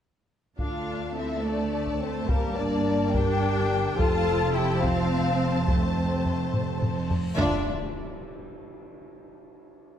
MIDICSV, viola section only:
0, 0, Header, 1, 2, 480
1, 0, Start_track
1, 0, Tempo, 566038
1, 505, Time_signature, 6, 3, 24, 8
1, 8471, End_track
2, 0, Start_track
2, 0, Title_t, "Viola section"
2, 0, Program_c, 0, 48
2, 502, Note_on_c, 0, 62, 51
2, 949, Note_off_c, 0, 62, 0
2, 982, Note_on_c, 0, 60, 48
2, 1221, Note_on_c, 0, 57, 60
2, 1223, Note_off_c, 0, 60, 0
2, 1689, Note_off_c, 0, 57, 0
2, 1699, Note_on_c, 0, 57, 55
2, 1937, Note_off_c, 0, 57, 0
2, 1948, Note_on_c, 0, 55, 59
2, 2182, Note_on_c, 0, 58, 64
2, 2186, Note_off_c, 0, 55, 0
2, 2661, Note_on_c, 0, 62, 85
2, 2663, Note_off_c, 0, 58, 0
2, 3373, Note_on_c, 0, 65, 83
2, 3383, Note_off_c, 0, 62, 0
2, 3849, Note_off_c, 0, 65, 0
2, 3856, Note_on_c, 0, 64, 76
2, 4100, Note_off_c, 0, 64, 0
2, 4102, Note_on_c, 0, 60, 84
2, 4810, Note_on_c, 0, 57, 56
2, 4823, Note_off_c, 0, 60, 0
2, 5993, Note_off_c, 0, 57, 0
2, 6261, Note_on_c, 0, 62, 78
2, 6530, Note_off_c, 0, 62, 0
2, 8471, End_track
0, 0, End_of_file